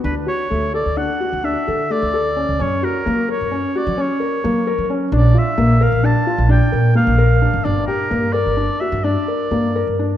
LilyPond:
<<
  \new Staff \with { instrumentName = "Oboe" } { \time 11/8 \key fis \phrygian \tempo 4 = 130 b'8 cis''4 d''8 fis''4 e''4 d''4. | cis''8 ais'4 cis''4 d''8 cis''2 r8 | d''8 e''4 f''8 a''4 g''4 f''4. | d''8 bes'4 d''4 e''8 d''2 r8 | }
  \new Staff \with { instrumentName = "Felt piano" } { \time 11/8 \key fis \phrygian d'8 fis'8 a8 a'8 d'8 fis'8 d'8 a'8 a8 a'8 cis'8 | cis'8 fis'8 ais8 ais'8 cis'8 fis'8 cis'8 ais'8 ais8 ais'8 cis'8 | d'8 f'8 bes8 bes'8 d'8 f'8 d'8 bes'8 bes8 bes'8 d'8 | d'8 g'8 bes8 bes'8 d'8 fis'8 d'8 bes'8 bes8 bes'8 d'8 | }
  \new Staff \with { instrumentName = "Upright bass" } { \clef bass \time 11/8 \key fis \phrygian d,8 r8 d,8. d,8 r8 d,8 r16 d8 r16 d,4 cis,16 | fis,8 r8 fis8. fis,8 r8 fis8 r8. fis8. fis8. | bes,,8 r8 bes,,8. bes,,8 r8 bes,,8 r16 bes,8 r16 bes,,4 g,,16 | g,,8 r8 g,8. g,,8 r8 g,8 r8. g,8. g,8. | }
>>